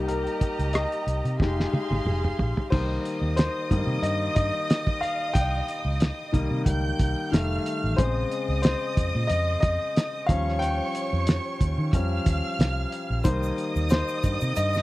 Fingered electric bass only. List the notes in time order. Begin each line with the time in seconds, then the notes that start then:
Already playing: C2
0.59 C#2
1.07 C2
1.25 C3
1.40 F1
1.73 muted fingered electric bass stroke
1.91 G#1
2.05 F1
2.39 A#1
2.72 C2
3.22 D#2
3.71 G2
3.87 C3
4.02 G2
4.36 G2
5.35 C2
5.85 C#2
6.34 C2
6.51 C3
6.66 C#2
7.00 C2
7.33 F1
7.84 A1
7.99 A#1
8.49 C#2
8.97 F2
9.15 A#2
9.30 F2
9.63 F2
10.29 D#2
11.13 F2
11.61 D#2
11.78 D#3
11.93 F2
12.26 D#2
12.59 C2
13.10 A#1
13.25 C2
13.76 D#2
14.24 G2
14.42 C3
14.57 G2